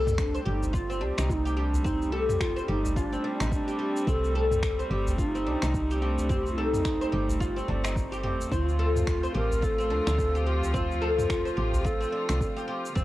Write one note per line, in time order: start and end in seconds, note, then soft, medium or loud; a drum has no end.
0.00 0.39 C2 loud
0.00 8.47 G3 medium
0.00 12.92 A3 medium
0.00 12.92 C4 medium
0.07 mid tom medium
0.07 shaker medium
0.18 0.44 D4 medium
0.18 finger snap medium
0.18 kick loud
0.18 shaker medium
0.35 0.45 C5 medium
0.35 shaker soft
0.46 1.03 G1 loud
0.46 0.76 D#4 medium
0.46 0.72 G4 medium
0.63 udu medium
0.63 shaker medium
0.73 0.88 F4 medium
0.73 1.03 F4 medium
0.73 kick loud
0.73 shaker medium
0.90 1.01 C4 medium
0.90 shaker soft
1.01 1.12 C2 medium
1.01 1.17 D4 medium
1.01 1.31 G4 medium
1.18 2.61 C2 medium
1.18 1.44 D#4 medium
1.18 finger snap medium
1.18 shaker medium
1.30 1.59 D#4 medium
1.30 1.34 F4 medium
1.30 kick loud
1.30 shaker medium
1.45 1.56 G4 medium
1.45 shaker soft
1.57 1.87 D4 medium
1.57 1.84 G4 medium
1.73 udu medium
1.73 shaker medium
1.84 2.11 C4 medium
1.84 2.14 D#4 medium
1.84 kick loud
1.84 mid tom medium
1.84 shaker medium
2.02 shaker soft
2.12 2.43 G4 loud
2.12 2.22 A4 medium
2.29 mid tom medium
2.29 shaker medium
2.41 2.68 F4 loud
2.41 finger snap medium
2.41 kick loud
2.41 shaker medium
2.56 2.68 C5 medium
2.56 shaker soft
2.68 3.17 G1 medium
2.68 2.98 D#4 medium
2.68 2.95 G4 medium
2.85 udu loud
2.85 shaker medium
2.96 3.52 D4 loud
2.96 3.11 F4 medium
2.96 kick loud
2.96 shaker medium
3.13 3.23 C4 medium
3.13 shaker soft
3.24 3.39 D4 medium
3.40 3.56 A1 medium
3.40 3.66 D#4 medium
3.40 finger snap medium
3.40 shaker medium
3.52 4.10 D4 loud
3.52 kick loud
3.52 shaker medium
3.68 3.78 G4 medium
3.68 shaker soft
3.79 4.06 G4 medium
3.97 shaker medium
4.07 4.84 C2 loud
4.07 4.34 C4 medium
4.07 4.64 A4 loud
4.07 kick loud
4.07 shaker medium
4.24 shaker soft
4.35 4.44 A4 medium
4.51 mid tom medium
4.51 shaker medium
4.63 finger snap medium
4.63 kick loud
4.63 shaker medium
4.79 4.90 C5 medium
4.79 shaker soft
4.90 5.47 G1 loud
4.90 5.17 G4 medium
4.90 5.17 G4 loud
5.07 udu medium
5.07 shaker medium
5.18 5.30 D4 loud
5.18 5.33 F4 medium
5.18 kick loud
5.18 shaker medium
5.30 6.04 D#4 loud
5.35 5.46 C4 medium
5.35 shaker soft
5.46 5.56 C2 medium
5.46 5.62 D4 medium
5.62 7.06 C2 loud
5.62 5.89 D#4 medium
5.62 finger snap medium
5.62 shaker medium
5.74 kick loud
5.74 shaker medium
5.91 6.01 G4 medium
5.91 shaker soft
6.02 6.32 D4 medium
6.02 6.28 G4 medium
6.18 udu medium
6.18 shaker medium
6.29 6.56 C4 medium
6.29 6.51 G4 loud
6.29 kick loud
6.29 mid tom medium
6.29 shaker medium
6.46 shaker soft
6.52 6.59 F4 medium
6.57 7.68 D#4 loud
6.57 6.67 A4 medium
6.73 mid tom medium
6.73 shaker medium
6.85 finger snap medium
6.85 kick loud
6.85 shaker medium
7.01 7.12 C5 medium
7.01 shaker soft
7.12 7.61 G1 loud
7.12 7.39 G4 medium
7.29 udu medium
7.29 shaker medium
7.40 7.55 F4 medium
7.40 kick loud
7.40 shaker medium
7.56 7.68 C4 medium
7.56 shaker soft
7.68 8.45 G1 medium
7.68 7.84 D4 medium
7.68 udu medium
7.84 8.10 D#4 medium
7.84 finger snap medium
7.84 shaker medium
7.96 kick loud
7.96 shaker medium
8.12 8.22 G4 medium
8.12 shaker soft
8.24 8.50 G4 medium
8.24 mid tom medium
8.41 shaker medium
8.52 9.28 D2 loud
8.52 12.92 F3 medium
8.52 8.78 C4 medium
8.52 13.04 C4 medium
8.52 13.04 F4 medium
8.52 9.31 F4 loud
8.52 kick loud
8.52 shaker medium
8.69 shaker soft
8.79 8.89 A4 medium
8.96 mid tom medium
8.96 shaker medium
9.07 finger snap medium
9.07 kick loud
9.07 shaker medium
9.23 9.34 C5 medium
9.23 shaker soft
9.35 9.92 A1 loud
9.35 9.61 G4 medium
9.35 9.65 A#4 loud
9.51 udu medium
9.51 shaker medium
9.62 9.77 F4 medium
9.62 10.48 A4 loud
9.62 kick loud
9.62 shaker medium
9.78 9.90 C4 medium
9.78 shaker soft
9.90 10.01 D2 medium
9.90 10.06 D4 medium
10.07 11.50 D2 loud
10.07 10.33 D4 medium
10.07 finger snap medium
10.07 shaker medium
10.18 kick loud
10.18 shaker medium
10.35 10.45 G4 medium
10.35 shaker soft
10.46 10.73 G4 medium
10.46 10.76 G4 medium
10.62 udu medium
10.62 shaker medium
10.74 11.00 C4 medium
10.74 11.87 F4 loud
10.74 kick loud
10.74 mid tom medium
10.74 shaker medium
10.91 shaker soft
11.02 11.11 A4 medium
11.18 mid tom medium
11.18 shaker medium
11.30 finger snap medium
11.30 kick loud
11.30 shaker medium
11.45 11.56 C5 medium
11.45 shaker soft
11.57 12.06 A1 medium
11.57 11.84 G4 medium
11.73 udu medium
11.73 shaker medium
11.84 11.99 F4 medium
11.84 12.69 A4 medium
11.84 kick loud
11.84 shaker medium
12.01 12.12 C4 medium
12.01 shaker soft
12.12 12.27 D4 medium
12.29 12.44 C2 loud
12.29 12.55 D4 medium
12.29 finger snap medium
12.29 shaker medium
12.41 kick loud
12.41 shaker medium
12.57 12.67 G4 medium
12.57 shaker soft
12.68 12.95 G4 medium
12.86 shaker medium
12.96 13.04 G1 loud
12.96 13.04 D3 medium
12.96 13.04 G3 medium
12.96 13.04 A#3 medium
12.96 13.04 C4 medium
12.96 kick loud
12.96 shaker medium